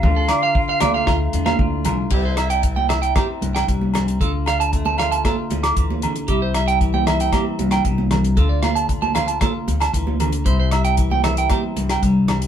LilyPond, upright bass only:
\new Staff \with { instrumentName = "Upright bass" } { \clef bass \time 4/4 \key c \major \tempo 4 = 115 d,8 r4 d,8 d,8 e,8 d,8 c,8 | c,2 r8 c,8 c,4 | d,2 r8 d,8 d,4 | c,2 r8 c,8 c,4 |
d,2 r8 d,8 d,4 | c,2 r8 c,8 c,4 | }